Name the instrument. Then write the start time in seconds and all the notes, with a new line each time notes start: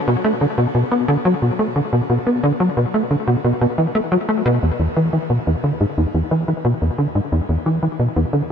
analog synth bass
0.08 B2
0.24 A3
0.41 D3
0.58 B2
0.75 B2
0.91 B3
1.08 D3
1.25 F#3
1.42 B2
1.59 A3
1.76 D3
1.93 B2
2.10 B2
2.27 B3
2.43 D3
2.60 F#3
2.77 B2
2.94 A3
3.11 D3
3.27 B2
3.44 B2
3.61 B2
3.78 E3
3.95 A3
4.12 F#3
4.29 A3
4.46 B2
4.63 E2
4.79 E2
4.96 E3
5.13 E3
5.30 B2
5.47 E2
5.64 D3
5.81 G#2
5.98 E2
6.14 E2
6.31 E3
6.48 E3
6.65 B2
6.82 E2
6.98 D3
7.15 G#2
7.32 E2
7.49 E2
7.66 E3
7.83 E3
7.99 B2
8.16 E2
8.33 D3